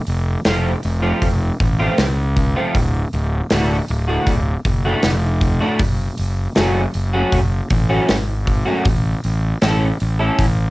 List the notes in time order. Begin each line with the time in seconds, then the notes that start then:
0.07 F1, open hi-hat
0.45 F1 F3 A3 C4 F4, snare, open hi-hat
0.83 F1, open hi-hat
1.02 F3 A3 C4 F4
1.22 F1, kick, open hi-hat
1.60 A1, muted clean electric guitar stroke, kick, open hi-hat
1.79 F3 A3 C4 F4
1.98 C#2, snare, open hi-hat
2.37 kick, open hi-hat
2.56 F3 A3 C4 F4
2.75 D1, kick, open hi-hat
3.13 D1, open hi-hat
3.50 D1 A2 D3 A3 F#4, snare, open hi-hat
3.88 D1, open hi-hat
4.08 A2 D3 A3 F#4
4.27 D1, kick, open hi-hat
4.65 F#1, muted clean electric guitar stroke, kick, open hi-hat
4.85 A2 D3 A3 F#4
5.03 F1, snare, open hi-hat
5.41 kick, open hi-hat
5.61 A2 D3 A3 F#4
5.79 F#1, kick, open hi-hat
6.18 F#1, open hi-hat
6.56 F#1 F#3 A3 C#4 F#4, snare, open hi-hat
6.94 F#1, open hi-hat
7.13 F#3 A3 C#4 F#4
7.32 F#1, kick, open hi-hat
7.70 A1, muted clean electric guitar stroke, kick, open hi-hat
7.90 F#3 A3 C#4 F#4
8.09 G#1, snare, open hi-hat
8.47 kick, open hi-hat
8.66 F#3 A3 C#4 F#4
8.85 A1, kick, open hi-hat
9.24 A1, open hi-hat
9.62 A1 A3 C#4 E4 A4, snare, open hi-hat
10.00 A1, open hi-hat
10.19 A3 C#4 E4 A4
10.39 A1, kick, open hi-hat